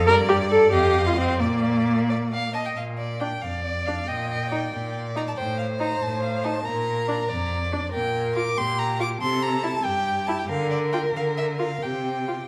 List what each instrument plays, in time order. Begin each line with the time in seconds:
0.07 cello G2, viola A#4, violin D5
0.29 viola G4
0.51 viola A4
0.72 cello F2, viola G4, violin D#5 F5
1.07 viola F4
1.16 viola C4
1.40 cello A#2, viola A#3, violin D5
2.10 violin D5
2.33 violin F5
2.54 violin D#5 A5
2.65 violin G5
2.76 cello A#2, violin F5
2.98 violin D5
3.20 viola D4, violin G5
3.41 cello F2, violin D5 F5
3.64 violin D5
3.85 viola D4, violin F5
4.06 cello A#2, violin D#5 G5
4.30 violin D#5
4.52 viola D#4, violin D5
4.73 cello A#2
5.16 viola D#4, violin A#5
5.28 violin A5
5.37 cello A2, violin C5 G5
5.58 violin F5
5.79 viola D#4, violin A#5
6.00 cello A2, violin A5
6.22 violin F5
6.44 viola D#4, violin A5
6.64 cello A#2, violin A#4 A#5
7.08 viola D4
7.28 cello F2, violin D5
7.72 viola D4
7.93 cello A#2, violin A#4 G5
8.35 viola F4, violin D6
8.57 cello A#2, violin G4 C6
8.78 violin A#5
9.00 viola F4, violin D6
9.21 cello C3, violin A4 C6
9.42 violin A#5
9.63 viola E4, violin A5
9.83 cello G2, violin G4 G5
10.26 viola E4, violin A5
10.38 violin G5
10.48 cello D3, violin A#4 F5
10.71 violin D5
10.93 viola F4, violin G5
11.15 cello D3, violin F5
11.37 violin E5
11.59 viola F4, violin F5
11.82 cello C3, violin G4 G5
12.28 viola F4